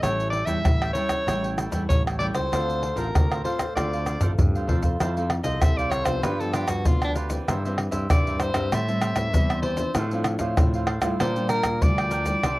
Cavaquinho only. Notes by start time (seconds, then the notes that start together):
0.03 E4 A4 C#5 G5
0.33 E4 A4 C#5 G5
0.47 E4 A4 C#5 G5
0.81 A4 C#5 G5
0.96 E4 A4 C#5 G5
1.26 E4 A4 C#5 G5
1.44 A4 C#5 G5
1.58 E4 A4 C#5 G5
1.72 E4 A4 C#5 G5
2.08 A4 C#5 G5
2.20 E4 A4 C#5 G5
2.35 A4 C#5 G5
2.52 D4 A4 C5 F5
2.83 D4 A4 C5 F5
2.95 D4 A4 C5 F5
3.31 A4 C5 F5
3.44 D4 A4 C5 F5
3.77 D4 A4 C5 F5
3.93 A4 C5 F5
4.05 D4 A4 C5 F5
4.21 D4 A4 C5 F5
4.55 A4 C5 F5
4.67 D4 A4 C5 F5
4.82 A4 C5 F5
5.00 E4 A4 C5 F5
5.17 A4 C5 F5
5.31 muted cavaquinho stroke
5.44 A4 C5 F5
5.78 A4 C5 F5
5.91 E4 A4 C5 F5
6.04 A4 C5 F5
6.23 F4 G4 B4 D5
6.40 G4 B4 D5
6.53 F4 G4 B4 D5
7.02 G4 B4 D5
7.15 F4 G4 B4 D5
7.29 G4 B4 D5
7.47 E4 A#4 C5 E5
7.65 A#4 C5 E5
7.91 A#4 C5 E5
8.26 A#4 C5 E5
8.39 E4 A#4 C5 E5
8.55 A#4 C5 E5
8.72 G4 C5 E5 A5
8.89 C5 E5 A5
9.02 G4 C5 E5 A5
9.51 C5 E5 A5
9.64 G4 C5 E5 A5
9.79 C5 E5 A5
9.97 D4 A4 C5 F5
10.14 A4 C5 F5
10.27 muted cavaquinho stroke
10.40 A4 C5 F5
10.75 A4 C5 F5
10.87 D4 A4 C5 F5
11.02 A4 C5 F5
11.20 D4 A#4 D5 G5
11.35 A#4 D5 G5
11.48 D4 A#4 D5 G5
11.63 muted cavaquinho stroke
11.98 A#4 D5 G5
12.10 D4 A#4 D5 G5
12.25 A#4 D5 G5
12.44 D4 G4 C5 E5